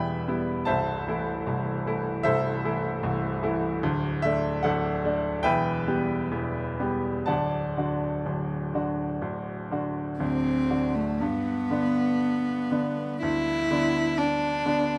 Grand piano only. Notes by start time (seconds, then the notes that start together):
Already playing: E1 E2 G3 B3 E4 B4 E5 F#5 G5 B5
0.28 G3 B3 E4
0.65 C1 C2 C5 E5 A5
1.08 E3 A3 E4
1.47 C1 C2
1.86 E3 A3 E4
2.23 C1 C2 A4 C5 E5
2.64 E3 A3 E4
3.03 C1 C2
3.43 E3 A3 E4
3.83 D1 D2
4.22 A3 D4 E5
4.63 D1 D2 A4 D5 F#5
5.05 A3 D4
5.43 E1 E2 B4 E5 G5
5.87 G3 B3 G4
6.31 E1 E2
6.79 G3 B3 G4
7.26 D1 D2 D5 F#5 A5
7.77 D3 D4 F#4
8.26 D1 D2
8.74 D3 D4 F#4
9.22 D1 D2
9.71 D3 D4 F#4
10.20 D1 D2
10.70 D3 D4 F#4
11.21 G2
11.70 D3 B3 D4
12.71 D3 B3 D4
13.23 D2
13.71 D3 B3 D4
14.66 D3 B3 D4